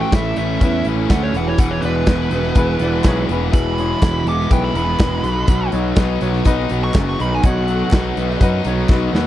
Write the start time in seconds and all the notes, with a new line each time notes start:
Already playing: A2 E3 A3 C#4 E4
0.01 G5
0.12 A1 E3 C#4 E4 A4 E5, kick, snare, closed hi-hat
0.36 A1 A3 C#4 E4 A4 E5, closed hi-hat
0.61 E2 C#4 E4 B4, kick, closed hi-hat
0.85 A1 E3 C#4 E4 B4, closed hi-hat
1.09 D2 A3 C#4 E4 A4 F#5, kick, snare, closed hi-hat
1.23 C#5
1.34 E1 E2 E3 E4 G#4 B4 F#5, closed hi-hat
1.47 C#5
1.58 E1 E2 E3 F#5, kick, closed hi-hat
1.71 C#5
1.81 E1 B2 G#3 B4, closed hi-hat
1.85 E4 G#4 D5
2.06 E1 E3 E4 G#4 B4, kick, snare, clap, closed hi-hat
2.31 E1 G#3 B3 E4 G#4 B4, closed hi-hat
2.43 snare
2.55 E1 B3 E4 G#4 B4, kick, closed hi-hat
2.79 E1 E3 B3 E4 G#4 D5, closed hi-hat
3.04 B1 G#3 E4 G#4 C#5, kick, snare, clap, closed hi-hat
3.29 E1 E3 B3 E4 G#4 B4, closed hi-hat
3.52 E1 E2 E3 E4 G#4 B4 B5, kick, closed hi-hat
3.78 B2 G#3 E4 G#4 C#5, closed hi-hat
4.02 E1 E3 E4 G#4 C#5, kick, snare, clap, closed hi-hat
4.25 E1 G#3 B3 E4 G#4 B4 D6, closed hi-hat
4.40 snare
4.50 B1 B3 E4 G#4 B4 G5, kick, closed hi-hat
4.64 B5
4.74 E1 E3 B3 E4 G#4 B4 B5, closed hi-hat
4.99 E1 G#3 E4 G#4 B4, kick, snare, clap, closed hi-hat
5.23 B1 B2 D#4 F#4 B4, closed hi-hat
5.47 B1 B2, kick, closed hi-hat
5.72 B1 F#3 D#4 F#4 C#5, closed hi-hat
5.96 B1 F#3 D#4 F#4 B4, kick, snare, clap, closed hi-hat
6.21 B1 B3 D#4 F#4 C#5, closed hi-hat
6.33 snare
6.45 B1 D#4 F#4 B4, kick, closed hi-hat
6.69 B1 F#3 B3 D#4 F#4 B4, closed hi-hat
6.84 C#6
6.94 F#1 F#3 B3 D#4 F#4 G#4, kick, snare, clap, closed hi-hat
7.09 C#6
7.19 B1 D#3 D#4 F#4 B4 B5, closed hi-hat
7.35 G#5
7.43 B1 B2 D#4 F#4 C#5 F#5, kick, closed hi-hat
7.68 F#3 D#4 F#4 A4, closed hi-hat
7.91 B1 F#3 D#4 F#4 B4, kick, snare, clap, closed hi-hat
8.16 B1 B3 D#4 F#4 B4, closed hi-hat
8.30 snare
8.40 F#2 D#4 F#4 B4, kick, closed hi-hat
8.64 B1 F#3 B3 D#4 F#4 C#5, closed hi-hat
8.89 B1 F#3 B3 D#4 F#4 B4, kick, snare, clap
9.13 D#2 D#3 D#4 F#4 B4, snare